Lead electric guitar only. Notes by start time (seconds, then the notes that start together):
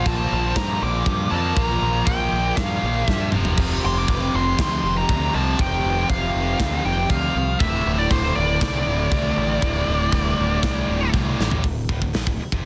0.07 A5
0.56 A#5
0.83 D6
1.31 A5
1.56 A#5
2.06 G5
2.56 F5
3.06 E5
3.86 C6
3.98 D6
4.36 C6
4.61 C6
4.97 A#5
5.35 A5
5.61 G5
6.10 F5
6.86 G5
7.10 F5
7.60 E5
7.98 D5
8.11 C5
8.37 D5